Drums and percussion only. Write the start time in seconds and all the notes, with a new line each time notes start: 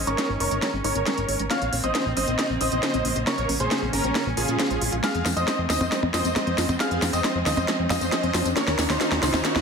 0.07 closed hi-hat
0.18 snare, closed hi-hat
0.40 open hi-hat
0.51 closed hi-hat
0.62 snare, closed hi-hat
0.84 open hi-hat
0.96 closed hi-hat
1.06 snare, closed hi-hat
1.18 closed hi-hat
1.29 open hi-hat
1.39 closed hi-hat
1.51 snare, closed hi-hat
1.62 closed hi-hat
1.73 open hi-hat
1.84 closed hi-hat
1.95 snare, closed hi-hat
2.17 open hi-hat
2.28 closed hi-hat
2.39 snare, closed hi-hat
2.61 open hi-hat
2.72 closed hi-hat
2.83 snare, closed hi-hat
2.94 closed hi-hat
3.05 open hi-hat
3.16 closed hi-hat
3.27 snare, closed hi-hat
3.38 closed hi-hat
3.49 open hi-hat
3.60 closed hi-hat
3.71 snare, closed hi-hat
3.93 open hi-hat
4.04 closed hi-hat
4.15 snare, closed hi-hat
4.37 open hi-hat
4.48 closed hi-hat
4.59 snare, closed hi-hat
4.70 closed hi-hat
4.82 open hi-hat
4.93 closed hi-hat
5.04 snare, closed hi-hat, tambourine
5.15 closed hi-hat
5.26 snare, open hi-hat, tambourine
5.37 closed hi-hat, tambourine
5.48 snare, closed hi-hat, tambourine
5.70 snare, open hi-hat, tambourine
5.81 closed hi-hat, tambourine, percussion blips
5.92 snare, closed hi-hat, tambourine
6.03 percussion blips
6.14 snare, open hi-hat, tambourine
6.25 closed hi-hat, tambourine
6.36 snare, closed hi-hat, tambourine, percussion blips
6.47 closed hi-hat
6.58 snare, open hi-hat, tambourine
6.69 closed hi-hat, tambourine, percussion blips
6.80 snare, closed hi-hat, tambourine
6.91 closed hi-hat
7.02 snare, open hi-hat, tambourine
7.13 closed hi-hat, tambourine
7.24 snare, closed hi-hat
7.46 snare, open hi-hat, tambourine
7.57 closed hi-hat, tambourine, percussion blips
7.68 snare, closed hi-hat, tambourine
7.90 snare, open hi-hat, tambourine, percussion blips
8.01 closed hi-hat, tambourine
8.12 snare, closed hi-hat
8.23 closed hi-hat
8.34 snare, open hi-hat, tambourine
8.46 closed hi-hat, tambourine
8.57 snare, closed hi-hat, tambourine
8.68 snare, closed hi-hat
8.79 snare, open hi-hat, tambourine
8.90 snare, closed hi-hat, tambourine
9.01 snare, closed hi-hat, tambourine
9.12 snare
9.23 snare, open hi-hat, tambourine
9.34 snare, closed hi-hat, tambourine, percussion blips
9.45 snare, closed hi-hat, tambourine
9.56 snare, percussion blips